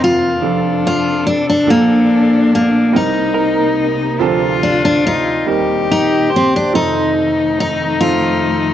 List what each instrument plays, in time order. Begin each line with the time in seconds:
Already playing: grand piano F1 F2 F3 C4 D#4 A#4, string section F2 D#3 A#3, cello C4, clean electric guitar C5
0.04 steel-string acoustic guitar F4
0.39 grand piano F1 F2 F3 C4 D4, string section C3 A4, cello D4
0.43 grand piano A4
0.87 steel-string acoustic guitar F4
1.27 steel-string acoustic guitar D4
1.50 steel-string acoustic guitar D4
1.66 grand piano A#1 A#2 F3 A#3 D4 A4, string section A#2 D4, cello D4
1.70 steel-string acoustic guitar A#3
2.55 steel-string acoustic guitar A#3
2.93 grand piano C2 C3 G3 C4 D#4 A#4, string section C3 A#3 D#4, cello D#4, steel-string acoustic guitar D#4
3.34 clean electric guitar A#4
4.19 grand piano D2 C3 F3 C4 D4 A4, string section D2 F4, cello F4
4.63 steel-string acoustic guitar D4
4.85 steel-string acoustic guitar D4
5.07 steel-string acoustic guitar D#4
5.44 string section D#2 A#2, grand piano D#2 D#3 G3 C4 D#4 A#4, cello G4
5.91 steel-string acoustic guitar D#4
6.30 clean electric guitar C5
6.36 steel-string acoustic guitar C4
6.56 steel-string acoustic guitar D4
6.73 grand piano F1 F2 F3 C4 D#4 A4, string section F2 D#3 A3, cello D#4, steel-string acoustic guitar D#4
7.60 steel-string acoustic guitar D#4
8.00 grand piano F3 C4 D#4 A4, steel-string acoustic guitar F4